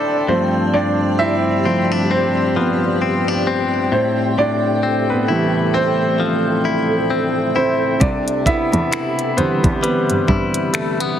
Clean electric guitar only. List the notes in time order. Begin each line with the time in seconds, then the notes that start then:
Already playing: A#3 D4 A4 C5
0.28 G2
0.74 G2
1.19 C4
1.65 C4
1.92 D4
2.11 C4
2.56 F3
3.02 C4
3.28 D4
3.47 C4
3.92 A2
4.38 A2
4.83 C4
5.28 E4
5.74 C4
6.20 F3
6.65 E4
7.10 C4
7.56 E4
8.01 C3
8.47 B3
8.92 E4
9.37 B3
9.83 G3
10.28 E4
10.74 A3
11.00 B3